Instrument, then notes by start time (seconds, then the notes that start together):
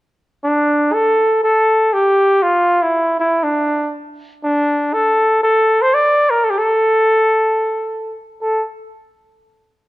flugelhorn
0.44 D4
0.93 A4
1.43 A4
1.93 G4
2.43 F4
2.82 E4
3.20 E4
3.43 D4
4.44 D4
4.93 A4
5.43 A4
5.82 C5
5.94 D5
6.30 A#4
6.44 A4
6.50 G4
6.58 A4
8.40 A4